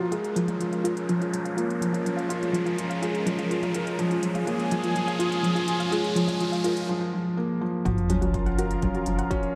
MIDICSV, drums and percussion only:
0, 0, Header, 1, 2, 480
1, 0, Start_track
1, 0, Tempo, 483871
1, 119, Time_signature, 4, 2, 24, 8
1, 9475, End_track
2, 0, Start_track
2, 0, Title_t, "Drums"
2, 119, Note_on_c, 9, 42, 40
2, 218, Note_off_c, 9, 42, 0
2, 242, Note_on_c, 9, 42, 20
2, 341, Note_off_c, 9, 42, 0
2, 360, Note_on_c, 9, 42, 67
2, 459, Note_off_c, 9, 42, 0
2, 478, Note_on_c, 9, 42, 27
2, 478, Note_on_c, 9, 45, 54
2, 577, Note_off_c, 9, 42, 0
2, 577, Note_off_c, 9, 45, 0
2, 601, Note_on_c, 9, 42, 42
2, 700, Note_off_c, 9, 42, 0
2, 721, Note_on_c, 9, 42, 20
2, 820, Note_off_c, 9, 42, 0
2, 843, Note_on_c, 9, 42, 72
2, 942, Note_off_c, 9, 42, 0
2, 962, Note_on_c, 9, 42, 31
2, 1061, Note_off_c, 9, 42, 0
2, 1082, Note_on_c, 9, 42, 39
2, 1181, Note_off_c, 9, 42, 0
2, 1206, Note_on_c, 9, 42, 20
2, 1305, Note_off_c, 9, 42, 0
2, 1325, Note_on_c, 9, 42, 69
2, 1424, Note_off_c, 9, 42, 0
2, 1443, Note_on_c, 9, 42, 29
2, 1543, Note_off_c, 9, 42, 0
2, 1566, Note_on_c, 9, 42, 39
2, 1666, Note_off_c, 9, 42, 0
2, 1691, Note_on_c, 9, 42, 20
2, 1790, Note_off_c, 9, 42, 0
2, 1807, Note_on_c, 9, 42, 68
2, 1907, Note_off_c, 9, 42, 0
2, 1928, Note_on_c, 9, 42, 29
2, 2027, Note_off_c, 9, 42, 0
2, 2046, Note_on_c, 9, 42, 41
2, 2146, Note_off_c, 9, 42, 0
2, 2169, Note_on_c, 9, 42, 20
2, 2268, Note_off_c, 9, 42, 0
2, 2284, Note_on_c, 9, 42, 69
2, 2383, Note_off_c, 9, 42, 0
2, 2408, Note_on_c, 9, 42, 28
2, 2408, Note_on_c, 9, 45, 52
2, 2507, Note_off_c, 9, 42, 0
2, 2507, Note_off_c, 9, 45, 0
2, 2524, Note_on_c, 9, 42, 42
2, 2623, Note_off_c, 9, 42, 0
2, 2643, Note_on_c, 9, 42, 20
2, 2742, Note_off_c, 9, 42, 0
2, 2762, Note_on_c, 9, 42, 66
2, 2861, Note_off_c, 9, 42, 0
2, 2884, Note_on_c, 9, 42, 31
2, 2983, Note_off_c, 9, 42, 0
2, 3002, Note_on_c, 9, 42, 39
2, 3101, Note_off_c, 9, 42, 0
2, 3122, Note_on_c, 9, 42, 20
2, 3221, Note_off_c, 9, 42, 0
2, 3241, Note_on_c, 9, 42, 69
2, 3241, Note_on_c, 9, 45, 58
2, 3340, Note_off_c, 9, 42, 0
2, 3340, Note_off_c, 9, 45, 0
2, 3359, Note_on_c, 9, 42, 29
2, 3459, Note_off_c, 9, 42, 0
2, 3482, Note_on_c, 9, 42, 37
2, 3582, Note_off_c, 9, 42, 0
2, 3599, Note_on_c, 9, 42, 20
2, 3599, Note_on_c, 9, 45, 64
2, 3698, Note_off_c, 9, 42, 0
2, 3698, Note_off_c, 9, 45, 0
2, 3715, Note_on_c, 9, 42, 66
2, 3814, Note_off_c, 9, 42, 0
2, 3839, Note_on_c, 9, 42, 31
2, 3938, Note_off_c, 9, 42, 0
2, 3957, Note_on_c, 9, 42, 40
2, 4056, Note_off_c, 9, 42, 0
2, 4077, Note_on_c, 9, 42, 20
2, 4176, Note_off_c, 9, 42, 0
2, 4194, Note_on_c, 9, 42, 68
2, 4294, Note_off_c, 9, 42, 0
2, 4315, Note_on_c, 9, 42, 28
2, 4315, Note_on_c, 9, 45, 57
2, 4414, Note_off_c, 9, 42, 0
2, 4414, Note_off_c, 9, 45, 0
2, 4437, Note_on_c, 9, 42, 40
2, 4536, Note_off_c, 9, 42, 0
2, 4558, Note_on_c, 9, 42, 18
2, 4658, Note_off_c, 9, 42, 0
2, 4676, Note_on_c, 9, 42, 70
2, 4775, Note_off_c, 9, 42, 0
2, 4796, Note_on_c, 9, 42, 30
2, 4896, Note_off_c, 9, 42, 0
2, 4918, Note_on_c, 9, 42, 39
2, 5017, Note_off_c, 9, 42, 0
2, 5038, Note_on_c, 9, 42, 20
2, 5137, Note_off_c, 9, 42, 0
2, 5157, Note_on_c, 9, 42, 69
2, 5257, Note_off_c, 9, 42, 0
2, 5278, Note_on_c, 9, 42, 30
2, 5377, Note_off_c, 9, 42, 0
2, 5399, Note_on_c, 9, 42, 39
2, 5498, Note_off_c, 9, 42, 0
2, 5517, Note_on_c, 9, 42, 20
2, 5616, Note_off_c, 9, 42, 0
2, 5633, Note_on_c, 9, 42, 72
2, 5732, Note_off_c, 9, 42, 0
2, 5755, Note_on_c, 9, 42, 29
2, 5854, Note_off_c, 9, 42, 0
2, 5876, Note_on_c, 9, 42, 42
2, 5975, Note_off_c, 9, 42, 0
2, 5995, Note_on_c, 9, 42, 19
2, 6094, Note_off_c, 9, 42, 0
2, 6114, Note_on_c, 9, 42, 69
2, 6213, Note_off_c, 9, 42, 0
2, 6235, Note_on_c, 9, 42, 29
2, 6235, Note_on_c, 9, 45, 59
2, 6334, Note_off_c, 9, 42, 0
2, 6334, Note_off_c, 9, 45, 0
2, 6353, Note_on_c, 9, 42, 41
2, 6452, Note_off_c, 9, 42, 0
2, 6478, Note_on_c, 9, 42, 19
2, 6577, Note_off_c, 9, 42, 0
2, 6590, Note_on_c, 9, 42, 76
2, 6690, Note_off_c, 9, 42, 0
2, 6713, Note_on_c, 9, 42, 32
2, 6813, Note_off_c, 9, 42, 0
2, 7793, Note_on_c, 9, 36, 112
2, 7796, Note_on_c, 9, 42, 40
2, 7892, Note_off_c, 9, 36, 0
2, 7895, Note_off_c, 9, 42, 0
2, 7916, Note_on_c, 9, 42, 20
2, 8015, Note_off_c, 9, 42, 0
2, 8032, Note_on_c, 9, 42, 75
2, 8132, Note_off_c, 9, 42, 0
2, 8156, Note_on_c, 9, 42, 28
2, 8156, Note_on_c, 9, 45, 62
2, 8255, Note_off_c, 9, 42, 0
2, 8255, Note_off_c, 9, 45, 0
2, 8275, Note_on_c, 9, 36, 103
2, 8275, Note_on_c, 9, 42, 44
2, 8374, Note_off_c, 9, 36, 0
2, 8374, Note_off_c, 9, 42, 0
2, 8396, Note_on_c, 9, 42, 22
2, 8495, Note_off_c, 9, 42, 0
2, 8517, Note_on_c, 9, 42, 75
2, 8616, Note_off_c, 9, 42, 0
2, 8637, Note_on_c, 9, 42, 31
2, 8736, Note_off_c, 9, 42, 0
2, 8753, Note_on_c, 9, 42, 43
2, 8756, Note_on_c, 9, 36, 111
2, 8852, Note_off_c, 9, 42, 0
2, 8855, Note_off_c, 9, 36, 0
2, 8874, Note_on_c, 9, 42, 20
2, 8973, Note_off_c, 9, 42, 0
2, 8989, Note_on_c, 9, 42, 76
2, 9088, Note_off_c, 9, 42, 0
2, 9113, Note_on_c, 9, 42, 31
2, 9212, Note_off_c, 9, 42, 0
2, 9235, Note_on_c, 9, 42, 38
2, 9238, Note_on_c, 9, 36, 115
2, 9334, Note_off_c, 9, 42, 0
2, 9337, Note_off_c, 9, 36, 0
2, 9354, Note_on_c, 9, 42, 22
2, 9453, Note_off_c, 9, 42, 0
2, 9475, End_track
0, 0, End_of_file